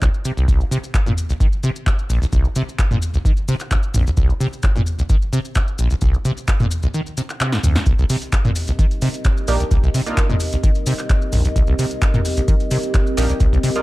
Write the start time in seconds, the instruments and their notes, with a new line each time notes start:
0.02 acid bass C2, kick, clap, maracas
0.14 maracas
0.25 acid bass C3, maracas
0.37 acid bass C2, maracas
0.48 kick, maracas
0.60 acid bass A#1, maracas
0.71 acid bass C3, maracas
0.84 maracas
0.94 kick, clap, maracas
1.06 acid bass A#2, mid tom, maracas
1.18 maracas
1.29 acid bass C2, maracas
1.40 acid bass D#3, kick, maracas
1.53 maracas
1.63 acid bass C3, maracas
1.76 maracas
1.87 acid bass A#1, kick, clap, maracas
1.99 maracas
2.10 acid bass A#1, maracas
2.22 acid bass C2, maracas
2.33 acid bass C2, kick, maracas
2.45 acid bass A#1, maracas
2.56 acid bass C3, maracas
2.69 maracas
2.79 kick, clap, maracas
2.91 acid bass A#2, mid tom, maracas
3.02 maracas
3.14 acid bass C2, maracas
3.25 acid bass D#3, kick, maracas
3.37 maracas
3.48 acid bass C3, maracas
3.60 clap, maracas
3.71 acid bass A#1, kick, clap, maracas
3.83 maracas
3.94 acid bass A#1, mid tom, maracas
4.06 acid bass C2, maracas
4.17 acid bass C2, kick, maracas
4.30 acid bass A#1, maracas
4.40 acid bass C3, maracas
4.53 maracas
4.63 kick, clap, maracas
4.76 acid bass A#2, mid tom, maracas
4.86 maracas
4.99 acid bass C2, maracas
5.09 acid bass D#3, kick, maracas
5.22 maracas
5.33 acid bass C3, maracas
5.45 maracas
5.55 acid bass A#1, kick, clap, maracas
5.68 maracas
5.79 acid bass A#1, maracas
5.90 acid bass C2, maracas
6.01 acid bass C2, kick, maracas
6.14 acid bass A#1, maracas
6.25 acid bass C3, maracas
6.37 maracas
6.48 kick, clap, maracas
6.60 acid bass A#2, mid tom, maracas
6.71 maracas
6.83 acid bass C2, maracas
6.94 acid bass D#3, maracas
7.06 maracas
7.17 acid bass C3, maracas
7.30 clap, maracas
7.40 acid bass C3, clap, maracas
7.52 acid bass G2, snare, maracas
7.63 acid bass D2, mid tom, maracas
7.75 acid bass C3, snare, maracas
7.86 acid bass C2, analog synth pad C4 G4 A#4 D#5, kick, closed hi-hat, maracas
7.99 acid bass C2, maracas
8.10 acid bass C3, open hi-hat, maracas
8.22 closed hi-hat, maracas
8.32 kick, clap, closed hi-hat, maracas
8.45 acid bass A#2, mid tom, maracas
8.56 open hi-hat, maracas
8.67 acid bass C2, closed hi-hat, maracas
8.79 acid bass D#3, kick, closed hi-hat, maracas
8.91 closed hi-hat, maracas
9.02 acid bass C3, open hi-hat, maracas
9.14 closed hi-hat, maracas
9.25 acid bass A#1, kick, clap, closed hi-hat, maracas
9.37 maracas
9.48 acid bass A#1, synth stab A#3 D4 D#4 G4, open hi-hat, maracas
9.60 acid bass C2, closed hi-hat, maracas
9.71 acid bass C2, kick, closed hi-hat, maracas
9.83 acid bass C2, maracas
9.94 acid bass C3, open hi-hat, maracas
10.06 synth stab A#3 D4 D#4 F4, closed hi-hat, maracas
10.17 kick, clap, closed hi-hat, maracas
10.29 acid bass A#2, mid tom, maracas
10.40 open hi-hat, maracas
10.52 acid bass C2, closed hi-hat, maracas
10.64 acid bass D#3, kick, closed hi-hat, maracas
10.75 closed hi-hat, maracas
10.86 acid bass C3, open hi-hat, maracas
10.99 clap, closed hi-hat, maracas
11.10 acid bass A#1, kick, clap, closed hi-hat, maracas
11.22 maracas
11.32 acid bass A#1, mid tom, open hi-hat, maracas
11.45 acid bass C2, closed hi-hat, maracas
11.56 acid bass C2, kick, closed hi-hat, maracas
11.67 acid bass C2, maracas
11.79 acid bass C3, open hi-hat, maracas
11.91 closed hi-hat, maracas
12.02 kick, clap, closed hi-hat, maracas
12.14 acid bass A#2, mid tom, maracas
12.25 open hi-hat, maracas
12.37 acid bass C2, closed hi-hat, maracas
12.48 acid bass D#3, kick, closed hi-hat, maracas
12.60 closed hi-hat, maracas
12.71 acid bass C3, open hi-hat, maracas
12.83 closed hi-hat, maracas
12.94 acid bass A#1, kick, clap, closed hi-hat, maracas
13.07 maracas
13.17 acid bass A#1, synth stab A#3 D4 D#4 G4, open hi-hat, maracas
13.29 acid bass C2, closed hi-hat, maracas
13.40 acid bass C2, kick, closed hi-hat, maracas
13.53 acid bass C2, maracas
13.63 acid bass C3, open hi-hat, maracas
13.75 synth stab A#3 D4 D#4 F4, closed hi-hat, maracas